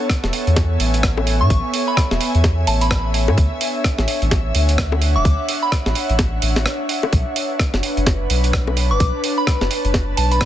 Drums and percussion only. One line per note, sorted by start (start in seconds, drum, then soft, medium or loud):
0.10 kick loud
0.10 cross-stick loud
0.10 closed hi-hat medium
0.24 snare soft
0.33 open hi-hat medium
0.47 closed hi-hat soft
0.56 kick loud
0.56 snare medium
0.56 closed hi-hat medium
0.80 open hi-hat loud
0.94 closed hi-hat medium
1.03 kick loud
1.03 cross-stick loud
1.03 closed hi-hat medium
1.17 high bongo medium
1.27 open hi-hat medium
1.50 kick loud
1.50 closed hi-hat medium
1.74 open hi-hat loud
1.97 kick loud
1.97 cross-stick loud
1.97 closed hi-hat medium
2.11 snare soft
2.21 open hi-hat medium
2.35 closed hi-hat soft
2.44 kick loud
2.44 snare medium
2.44 closed hi-hat medium
2.67 open hi-hat loud
2.81 closed hi-hat medium
2.91 kick loud
2.91 cross-stick loud
2.91 closed hi-hat medium
3.14 open hi-hat medium
3.28 high bongo medium
3.38 kick loud
3.38 closed hi-hat medium
3.61 open hi-hat loud
3.84 kick loud
3.84 cross-stick loud
3.84 closed hi-hat medium
3.98 snare soft
4.08 open hi-hat loud
4.22 closed hi-hat soft
4.31 kick loud
4.31 snare medium
4.31 closed hi-hat medium
4.55 open hi-hat loud
4.69 closed hi-hat medium
4.78 kick loud
4.78 cross-stick loud
4.78 closed hi-hat medium
4.92 high bongo medium
5.02 open hi-hat medium
5.25 kick loud
5.25 closed hi-hat medium
5.49 open hi-hat loud
5.72 kick loud
5.72 cross-stick loud
5.72 closed hi-hat medium
5.86 snare soft
5.95 open hi-hat loud
6.09 closed hi-hat soft
6.19 kick loud
6.19 snare medium
6.19 closed hi-hat medium
6.42 open hi-hat loud
6.56 snare medium
6.56 closed hi-hat medium
6.66 cross-stick loud
6.66 closed hi-hat medium
6.89 open hi-hat loud
7.03 high bongo medium
7.13 kick loud
7.13 closed hi-hat medium
7.36 open hi-hat loud
7.59 kick loud
7.59 cross-stick loud
7.59 closed hi-hat medium
7.74 snare soft
7.83 open hi-hat loud
7.97 closed hi-hat soft
8.06 kick loud
8.06 snare medium
8.06 closed hi-hat medium
8.30 open hi-hat loud
8.44 closed hi-hat medium
8.53 kick loud
8.53 cross-stick loud
8.53 closed hi-hat medium
8.67 high bongo medium
8.77 open hi-hat loud
9.00 kick loud
9.00 closed hi-hat medium
9.24 open hi-hat loud
9.47 kick loud
9.47 cross-stick loud
9.47 closed hi-hat medium
9.61 snare soft
9.71 open hi-hat medium
9.85 closed hi-hat soft
9.94 kick loud
9.94 snare medium
9.94 closed hi-hat medium
10.17 open hi-hat loud
10.32 closed hi-hat medium
10.41 kick loud
10.41 cross-stick loud
10.41 closed hi-hat medium